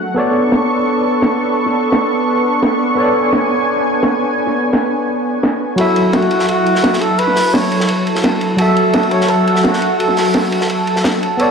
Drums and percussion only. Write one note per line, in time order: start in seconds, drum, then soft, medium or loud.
0.52 snare loud
1.22 snare loud
1.66 snare soft
1.92 snare loud
2.63 snare loud
3.33 snare loud
4.03 snare loud
4.47 snare soft
4.73 snare loud
5.43 snare loud
5.78 ride medium
5.96 ride medium
6.13 snare loud
6.13 ride medium
6.22 ride soft
6.31 ride medium
6.39 snare soft
6.49 ride medium
6.66 ride medium
6.75 snare soft
6.84 snare loud
6.84 ride medium
6.93 snare soft
7.01 ride medium
7.19 ride medium
7.27 snare soft
7.36 snare soft
7.36 open hi-hat medium
7.54 snare loud
7.54 ride medium
7.72 ride medium
7.80 snare medium
7.88 ride medium
8.07 ride medium
8.15 snare soft
8.24 snare loud
8.24 ride medium
8.41 ride medium
8.58 ride medium
8.77 ride medium
8.93 snare loud
8.93 ride medium
9.03 ride soft
9.11 ride medium
9.21 snare soft
9.28 ride medium
9.47 ride medium
9.56 snare soft
9.64 snare loud
9.64 ride medium
9.73 snare soft
9.82 ride medium
10.00 ride medium
10.08 snare soft
10.17 snare soft
10.17 open hi-hat medium
10.34 snare loud
10.34 ride medium
10.52 ride medium
10.61 snare soft
10.70 ride medium
10.87 ride medium
10.96 snare soft
11.04 snare medium
11.04 snare loud
11.04 ride medium
11.23 ride medium
11.39 ride medium